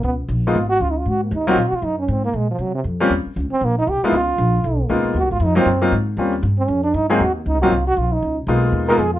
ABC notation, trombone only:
X:1
M:4/4
L:1/8
Q:"Swing" 1/4=235
K:Abmix
V:1 name="Trombone"
_C z3 F G (3F E F | G B, E G (3F G F E D | C B, A, F, G, C, z2 | z3 C B, E =G _F |
F6 z2 | G F E C2 z3 | z3 C D =D E F | G B, E G F G F E- |
E z4 B A F |]